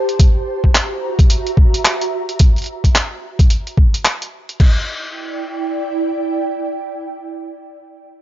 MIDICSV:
0, 0, Header, 1, 3, 480
1, 0, Start_track
1, 0, Tempo, 550459
1, 169, Time_signature, 4, 2, 24, 8
1, 7167, End_track
2, 0, Start_track
2, 0, Title_t, "Ambient pad"
2, 0, Program_c, 0, 92
2, 0, Note_on_c, 0, 67, 93
2, 0, Note_on_c, 0, 72, 77
2, 0, Note_on_c, 0, 81, 91
2, 171, Note_on_c, 0, 66, 90
2, 173, Note_off_c, 0, 67, 0
2, 173, Note_off_c, 0, 81, 0
2, 175, Note_off_c, 0, 72, 0
2, 339, Note_on_c, 0, 82, 90
2, 584, Note_on_c, 0, 76, 73
2, 2090, Note_off_c, 0, 66, 0
2, 2090, Note_off_c, 0, 76, 0
2, 2092, Note_off_c, 0, 82, 0
2, 4013, Note_on_c, 0, 64, 75
2, 4093, Note_on_c, 0, 74, 74
2, 4177, Note_on_c, 0, 79, 75
2, 6590, Note_off_c, 0, 74, 0
2, 6594, Note_off_c, 0, 64, 0
2, 6594, Note_off_c, 0, 79, 0
2, 7167, End_track
3, 0, Start_track
3, 0, Title_t, "Drums"
3, 77, Note_on_c, 9, 42, 36
3, 164, Note_off_c, 9, 42, 0
3, 170, Note_on_c, 9, 36, 118
3, 171, Note_on_c, 9, 42, 75
3, 257, Note_off_c, 9, 36, 0
3, 258, Note_off_c, 9, 42, 0
3, 557, Note_on_c, 9, 36, 60
3, 644, Note_off_c, 9, 36, 0
3, 653, Note_on_c, 9, 39, 111
3, 653, Note_on_c, 9, 42, 72
3, 740, Note_off_c, 9, 39, 0
3, 740, Note_off_c, 9, 42, 0
3, 1036, Note_on_c, 9, 36, 105
3, 1039, Note_on_c, 9, 42, 51
3, 1123, Note_off_c, 9, 36, 0
3, 1126, Note_off_c, 9, 42, 0
3, 1133, Note_on_c, 9, 42, 77
3, 1220, Note_off_c, 9, 42, 0
3, 1278, Note_on_c, 9, 42, 34
3, 1366, Note_off_c, 9, 42, 0
3, 1371, Note_on_c, 9, 36, 101
3, 1458, Note_off_c, 9, 36, 0
3, 1519, Note_on_c, 9, 42, 48
3, 1606, Note_off_c, 9, 42, 0
3, 1613, Note_on_c, 9, 39, 117
3, 1613, Note_on_c, 9, 42, 75
3, 1700, Note_off_c, 9, 39, 0
3, 1700, Note_off_c, 9, 42, 0
3, 1757, Note_on_c, 9, 42, 34
3, 1844, Note_off_c, 9, 42, 0
3, 1997, Note_on_c, 9, 42, 35
3, 2084, Note_off_c, 9, 42, 0
3, 2088, Note_on_c, 9, 42, 72
3, 2091, Note_on_c, 9, 36, 115
3, 2175, Note_off_c, 9, 42, 0
3, 2179, Note_off_c, 9, 36, 0
3, 2236, Note_on_c, 9, 42, 15
3, 2251, Note_off_c, 9, 42, 0
3, 2251, Note_on_c, 9, 42, 20
3, 2284, Note_off_c, 9, 42, 0
3, 2284, Note_on_c, 9, 42, 23
3, 2303, Note_off_c, 9, 42, 0
3, 2303, Note_on_c, 9, 42, 26
3, 2319, Note_off_c, 9, 42, 0
3, 2319, Note_on_c, 9, 42, 30
3, 2407, Note_off_c, 9, 42, 0
3, 2477, Note_on_c, 9, 36, 59
3, 2482, Note_on_c, 9, 42, 33
3, 2564, Note_off_c, 9, 36, 0
3, 2569, Note_off_c, 9, 42, 0
3, 2575, Note_on_c, 9, 39, 109
3, 2575, Note_on_c, 9, 42, 69
3, 2662, Note_off_c, 9, 39, 0
3, 2662, Note_off_c, 9, 42, 0
3, 2958, Note_on_c, 9, 36, 99
3, 2960, Note_on_c, 9, 42, 48
3, 3045, Note_off_c, 9, 36, 0
3, 3048, Note_off_c, 9, 42, 0
3, 3054, Note_on_c, 9, 42, 72
3, 3141, Note_off_c, 9, 42, 0
3, 3200, Note_on_c, 9, 42, 32
3, 3287, Note_off_c, 9, 42, 0
3, 3291, Note_on_c, 9, 36, 96
3, 3379, Note_off_c, 9, 36, 0
3, 3438, Note_on_c, 9, 42, 44
3, 3525, Note_off_c, 9, 42, 0
3, 3532, Note_on_c, 9, 39, 112
3, 3532, Note_on_c, 9, 42, 71
3, 3619, Note_off_c, 9, 39, 0
3, 3619, Note_off_c, 9, 42, 0
3, 3679, Note_on_c, 9, 42, 32
3, 3767, Note_off_c, 9, 42, 0
3, 3916, Note_on_c, 9, 42, 32
3, 4004, Note_off_c, 9, 42, 0
3, 4010, Note_on_c, 9, 36, 105
3, 4012, Note_on_c, 9, 49, 76
3, 4098, Note_off_c, 9, 36, 0
3, 4099, Note_off_c, 9, 49, 0
3, 7167, End_track
0, 0, End_of_file